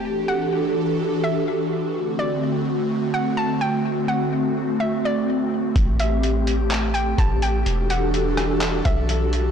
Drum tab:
HH |--------|--------|--------|xxxxxxxx|
CP |--------|--------|--------|----x---|
SD |--------|--------|--------|--------|
BD |--------|--------|--------|o-----o-|

HH |xxxxxxxx|
CP |----x---|
SD |---r----|
BD |-----o--|